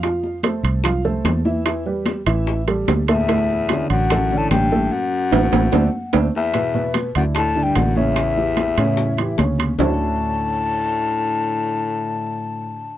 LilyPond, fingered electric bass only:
\new Staff \with { instrumentName = "Fingered electric bass" } { \clef bass \time 4/4 \key d \major \tempo 4 = 148 f,4. c,4. e,4~ | e,4. a,,4. d,4~ | d,4. a,,4. a,,4 | r4 a,,8 a,,8 d,8 r8 d,8 r8 |
r4. d,4. a,,4~ | a,,4. a,4. d,4 | d,1~ | d,1 | }